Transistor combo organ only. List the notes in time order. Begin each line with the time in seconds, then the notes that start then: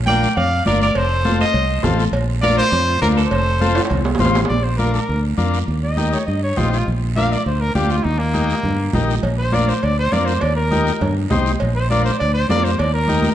0.09 D4 F4 A#4
0.67 D4 F4 A#4
1.25 C4 F4 A4
1.83 C4 F4 A4
2.43 D4 F4 A#4
3.02 D4 F4 A#4
3.60 C4 F4 A4
4.20 C4 F4 C5
4.79 D4 F4 A#4
5.38 D4 F4 A#4
5.97 D#4 G4 A#4
6.57 D#4 G4 C5
7.17 D4 F4 A#4
7.75 D4 F4 G4
8.34 D#4 G4 A#4
8.95 D#4 G4 A#4
9.53 D4 F4 A#4
10.12 D4 F4 A#4
10.71 D#4 G4 A#4
11.30 D#4 G4 C5
11.91 D4 F4 A#4
12.50 D4 F4 A#4
13.09 D#4 G4 A#4